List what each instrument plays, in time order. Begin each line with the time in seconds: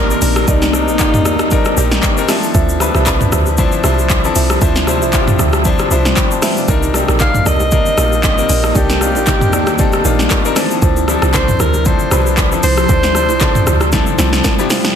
Already playing: log drum bass A#1, ambient pad D#3 A#3 C4, grand piano G3 C4 D4 D#4 G4 A#4 C5, alto saxophone A#4
0.10 grand piano G3 C4 D4 D#4 A#4, shaker
0.22 log drum bass A#1, marimba D#4 A#4 D5, open hi-hat, shaker
0.36 cross-stick, shaker
0.47 log drum bass C2, grand piano G3 C4 D4 D#4 A#4, marimba D#4 A#4 D5, alto saxophone D#4, kick, shaker
0.62 snare, shaker
0.73 grand piano G3 C4 D4 D#4 A#4, cross-stick, shaker
0.88 log drum bass A#1, marimba D#4 A#4 D5, shaker
0.99 grand piano G3 C4 D#4 F4 D5, kick, clap, shaker
1.14 mid tom, shaker
1.25 log drum bass C2, marimba D#4 A#4 D5, cross-stick, shaker
1.39 cross-stick, shaker
1.51 grand piano G3 C4 D4 D#4 A#4, kick, shaker
1.65 cross-stick, shaker
1.77 log drum bass A#1, grand piano G3 C4 D#4 G4 D5, marimba D#4 A#4 D5, shaker
1.91 snare, shaker
2.03 kick, clap, shaker
2.17 grand piano G3 C4 D4 D#4 A#4, shaker
2.28 ambient pad C3 F3 E5, grand piano F3 C4 D4 E4 G4, marimba F4 C5 E5, cross-stick, snare, open hi-hat, shaker
2.36 grand piano A4
2.43 shaker
2.54 log drum bass D2, marimba F4 C5 E5, kick, shaker
2.69 shaker
2.80 grand piano F3 C4 D4 E4 B4, cross-stick, shaker
2.94 log drum bass C2, marimba F4 C5 E5, cross-stick, shaker
3.06 grand piano F3 C4 D4 E4 B4, kick, clap, shaker
3.21 mid tom, shaker
3.32 log drum bass D2, marimba F4 C5 E5, cross-stick, shaker
3.46 shaker
3.58 grand piano F3 C4 D4 E4 C5, kick, shaker
3.72 shaker
3.84 log drum bass C2, grand piano F3 C4 D4 E4 C5, marimba F4 C5 E5, cross-stick, shaker
3.99 shaker
4.10 kick, clap, shaker
4.24 grand piano F3 C4 D4 E4 A4, shaker
4.35 log drum bass C2, marimba F4 C5 E5, open hi-hat, shaker
4.50 cross-stick, shaker
4.61 log drum bass D2, grand piano F3 C4 D4 E4 C5, marimba F4 C5 E5, kick, shaker
4.76 snare, shaker
4.87 grand piano F3 C4 D4 E4 C5, cross-stick, shaker
5.01 log drum bass C2, marimba F4 C5 E5, shaker
5.13 grand piano F3 C4 D4 E4 F4, kick, clap, shaker
5.21 grand piano G4
5.28 mid tom, shaker
5.39 log drum bass D2, marimba F4 C5 E5, cross-stick, shaker
5.53 cross-stick, shaker
5.65 grand piano F3 C4 D4 E4 C5, kick, shaker
5.79 cross-stick, shaker
5.91 log drum bass C2, grand piano F3 C4 D4 E4 C5 E5, marimba F4 C5 E5, shaker
6.05 snare, shaker
6.17 grand piano D5 G5 B5, kick, clap, shaker
6.31 grand piano C5 A5, shaker
6.42 marimba F4 C5 E5, grand piano B4 G5 A5, cross-stick, snare, open hi-hat, shaker
6.57 grand piano F4 D5, shaker
6.68 log drum bass C2, ambient pad D#3 A#3 C4, grand piano G3 C4 D4 D#4 A#4, marimba D#4 A#4 D5, kick, low conga, shaker
6.83 high bongo, shaker
6.94 grand piano G3 C4 D4 D#4 G4, cross-stick, low bongo, shaker
7.08 log drum bass A#1, marimba D#4 A#4 D5, cross-stick, low bongo, shaker
7.20 grand piano G3 C4 D4 D#4 A4, alto saxophone F5, kick, clap, high bongo, low conga, shaker
7.27 grand piano A#4
7.34 mid tom, shaker
7.46 log drum bass C2, marimba D#4 A#4 D5, alto saxophone D#5, cross-stick, shaker
7.60 low bongo, shaker
7.71 grand piano G3 C4 D4 D#4 A#4, kick, low conga, shaker
7.86 shaker
7.97 log drum bass A#1, grand piano G3 C4 D4 D#4 F4, marimba D#4 A#4 D5, cross-stick, low bongo, shaker
8.13 shaker
8.23 alto saxophone D#5, kick, clap, high bongo, shaker
8.38 grand piano G3 A#3 C4 D#4 A#4, shaker
8.49 log drum bass A#1, marimba D#4 A#4 D5, open hi-hat, shaker
8.64 cross-stick, shaker
8.75 log drum bass C2, grand piano G3 C4 D4 D#4 A4, marimba D#4 A#4 D5, alto saxophone G4, kick, low conga, shaker
8.90 snare, high bongo, shaker
9.01 grand piano G3 C4 D4 D#4 F4, cross-stick, low bongo, shaker
9.15 log drum bass A#1, marimba D#4 A#4 D5, low bongo, shaker
9.27 grand piano G3 C4 D4 D#4 A#4, kick, clap, high bongo, low conga, shaker
9.41 mid tom, shaker
9.53 log drum bass C2, marimba D#4 A#4 D5, cross-stick, shaker
9.67 cross-stick, low bongo, shaker
9.78 grand piano G3 C4 D4 D#4 A4, kick, low conga, shaker
9.93 cross-stick, shaker
10.04 log drum bass A#1, grand piano G3 C4 D4 D#4 F4, marimba D#4 A#4 D5, low bongo, shaker
10.19 snare, shaker
10.30 kick, clap, high bongo, shaker
10.45 grand piano G3 C4 D4 D#4 A#4, shaker
10.56 ambient pad C3 F3 E5, grand piano E3 C4 D4 E4 A4, marimba E4 F4 C5, cross-stick, snare, open hi-hat, shaker
10.63 grand piano F3
10.71 shaker
10.82 log drum bass D2, marimba E4 F4 C5, kick, low conga, shaker
10.96 high bongo, shaker
11.08 grand piano F3 C4 D4 E4 A4, cross-stick, low bongo, shaker
11.22 log drum bass C2, marimba E4 F4 C5, cross-stick, low bongo, shaker
11.33 grand piano F3 C4 D4 E4 A4, alto saxophone C5, kick, clap, high bongo, low conga, shaker
11.48 mid tom, shaker
11.59 log drum bass D2, marimba E4 F4 C5, alto saxophone A#4, cross-stick, shaker
11.74 low bongo, shaker
11.85 grand piano F3 C4 D4 E4 A4, alto saxophone C5, kick, low conga, shaker
11.99 shaker
12.11 log drum bass C2, grand piano F3 C4 D4 E4 B4, marimba E4 F4 C5, cross-stick, low bongo, shaker
12.26 shaker
12.37 kick, clap, high bongo, shaker
12.52 grand piano F3 C4 D4 E4 A4, shaker
12.63 log drum bass C2, marimba E4 F4 C5, alto saxophone C5, open hi-hat, shaker
12.78 cross-stick, shaker
12.89 log drum bass D2, grand piano F3 C4 D4 E4 A4, marimba E4 F4 C5, kick, low conga, shaker
13.03 snare, high bongo, shaker
13.15 grand piano F3 C4 D4 E4 C5, cross-stick, low bongo, shaker
13.29 log drum bass C2, marimba E4 F4 C5, low bongo, shaker
13.40 grand piano F3 C4 D4 E4 A4, kick, clap, high bongo, low conga, shaker
13.55 mid tom, shaker
13.66 log drum bass D2, marimba E4 F4 C5, cross-stick, shaker
13.81 cross-stick, low bongo, shaker
13.92 grand piano F3 C4 D4 E4 A4, kick, snare, low conga, shaker
14.06 shaker
14.18 log drum bass C2, grand piano F3 C4 D4 E4 A4, marimba E4 F4 C5, snare, low bongo, shaker
14.33 snare, shaker
14.44 grand piano A5, kick, snare, high bongo, shaker
14.59 grand piano F3 C4 D4 E4 G4, shaker
14.70 marimba E4 F4 C5, grand piano F5, snare, open hi-hat, shaker
14.85 snare, shaker